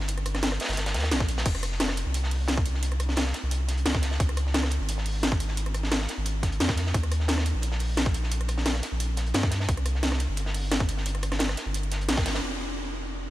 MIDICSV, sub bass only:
0, 0, Header, 1, 2, 480
1, 0, Start_track
1, 0, Tempo, 342857
1, 122, Time_signature, 4, 2, 24, 8
1, 18620, End_track
2, 0, Start_track
2, 0, Title_t, "Sub bass"
2, 0, Program_c, 0, 38
2, 0, Note_on_c, 0, 31, 90
2, 823, Note_off_c, 0, 31, 0
2, 967, Note_on_c, 0, 31, 88
2, 1322, Note_on_c, 0, 39, 78
2, 1343, Note_off_c, 0, 31, 0
2, 1562, Note_on_c, 0, 34, 84
2, 1583, Note_off_c, 0, 39, 0
2, 2023, Note_off_c, 0, 34, 0
2, 2040, Note_on_c, 0, 29, 102
2, 2865, Note_off_c, 0, 29, 0
2, 2889, Note_on_c, 0, 36, 87
2, 4664, Note_off_c, 0, 36, 0
2, 4807, Note_on_c, 0, 36, 89
2, 5393, Note_off_c, 0, 36, 0
2, 5401, Note_on_c, 0, 37, 81
2, 5863, Note_off_c, 0, 37, 0
2, 5880, Note_on_c, 0, 37, 100
2, 6706, Note_off_c, 0, 37, 0
2, 6727, Note_on_c, 0, 32, 87
2, 8503, Note_off_c, 0, 32, 0
2, 8649, Note_on_c, 0, 32, 88
2, 9235, Note_off_c, 0, 32, 0
2, 9244, Note_on_c, 0, 41, 83
2, 9704, Note_off_c, 0, 41, 0
2, 9722, Note_on_c, 0, 39, 99
2, 10546, Note_off_c, 0, 39, 0
2, 10565, Note_on_c, 0, 34, 87
2, 12342, Note_off_c, 0, 34, 0
2, 12488, Note_on_c, 0, 34, 85
2, 13075, Note_off_c, 0, 34, 0
2, 13084, Note_on_c, 0, 43, 84
2, 13544, Note_off_c, 0, 43, 0
2, 13560, Note_on_c, 0, 36, 101
2, 14386, Note_off_c, 0, 36, 0
2, 14407, Note_on_c, 0, 31, 87
2, 16184, Note_off_c, 0, 31, 0
2, 16326, Note_on_c, 0, 31, 88
2, 16922, Note_on_c, 0, 34, 83
2, 16943, Note_off_c, 0, 31, 0
2, 17163, Note_on_c, 0, 31, 83
2, 17184, Note_off_c, 0, 34, 0
2, 17379, Note_off_c, 0, 31, 0
2, 17400, Note_on_c, 0, 29, 83
2, 18620, Note_off_c, 0, 29, 0
2, 18620, End_track
0, 0, End_of_file